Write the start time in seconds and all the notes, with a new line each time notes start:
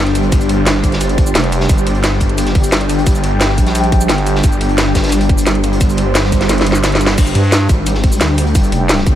Already playing: G1 G3 D4 G4 C5
0.06 snare, closed hi-hat
0.15 closed hi-hat, shaker
0.23 closed hi-hat
0.32 kick, closed hi-hat, shaker
0.41 closed hi-hat, shaker
0.49 closed hi-hat
0.67 snare, closed hi-hat, shaker
0.74 snare
0.84 G1, kick, closed hi-hat, shaker
0.92 snare, closed hi-hat
1.00 closed hi-hat, shaker
1.09 closed hi-hat
1.18 kick, closed hi-hat
1.27 shaker
1.35 F1, snare, closed hi-hat, shaker
1.44 closed hi-hat
1.52 closed hi-hat, shaker
1.60 snare
1.69 G1 G5, kick, closed hi-hat, shaker
1.78 shaker
1.87 closed hi-hat
1.95 closed hi-hat
2.04 snare, closed hi-hat, shaker
2.20 G1, kick, closed hi-hat, shaker
2.29 closed hi-hat
2.38 closed hi-hat, shaker
2.46 snare, closed hi-hat
2.55 kick, closed hi-hat, open hi-hat
2.64 shaker
2.72 G1, snare, closed hi-hat, shaker
2.80 snare, closed hi-hat
2.89 closed hi-hat, shaker
2.98 closed hi-hat
3.07 kick, closed hi-hat, shaker
3.15 closed hi-hat, shaker
3.23 closed hi-hat
3.41 snare, closed hi-hat, shaker
3.49 snare
3.58 A#1, kick, closed hi-hat, shaker
3.66 snare, closed hi-hat
3.75 closed hi-hat, shaker
3.84 closed hi-hat
3.92 kick, closed hi-hat
4.01 shaker
4.09 G1, snare, closed hi-hat, shaker
4.18 closed hi-hat
4.27 closed hi-hat, shaker
4.36 snare
4.43 G1 C5, kick, closed hi-hat, shaker
4.52 shaker
4.61 closed hi-hat
4.69 closed hi-hat
4.78 snare, closed hi-hat, shaker
4.95 G1, kick, snare, closed hi-hat, shaker
5.03 snare, closed hi-hat
5.08 snare, closed hi-hat
5.12 closed hi-hat, shaker
5.21 closed hi-hat
5.29 kick, closed hi-hat
5.38 closed hi-hat, shaker
5.47 G1, snare, closed hi-hat, shaker
5.55 closed hi-hat
5.64 closed hi-hat, shaker
5.73 closed hi-hat
5.80 kick, closed hi-hat, shaker
5.89 closed hi-hat, shaker
5.97 closed hi-hat
6.15 snare, closed hi-hat, shaker
6.24 snare
6.32 G1, kick, closed hi-hat, shaker
6.41 snare, closed hi-hat
6.49 snare, closed hi-hat, shaker
6.57 snare, closed hi-hat
6.66 closed hi-hat
6.72 snare, shaker
6.84 G1, snare, closed hi-hat, shaker
6.92 snare, closed hi-hat
7.01 closed hi-hat, shaker
7.07 snare
7.10 snare
7.18 G1 G3 D4 G4 G5, kick, closed hi-hat, crash, shaker
7.27 shaker
7.34 G2, closed hi-hat
7.44 closed hi-hat
7.52 snare, closed hi-hat, shaker
7.69 G#1, kick, closed hi-hat, shaker
7.87 closed hi-hat, shaker
7.95 snare
8.04 kick, closed hi-hat, open hi-hat
8.12 shaker
8.21 D2, snare, closed hi-hat, shaker
8.30 snare
8.38 closed hi-hat, open hi-hat, shaker
8.47 closed hi-hat
8.55 G1, kick, closed hi-hat, shaker
8.64 shaker
8.72 F1, closed hi-hat
8.89 snare, closed hi-hat, shaker
8.97 snare
9.06 G1, kick, closed hi-hat, shaker